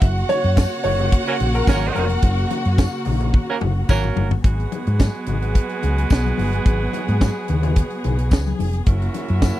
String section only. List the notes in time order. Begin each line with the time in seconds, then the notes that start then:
0.00 C#3 A#3 F#4
4.45 F#3 B3 G#4
8.86 C#3 A#3 F#4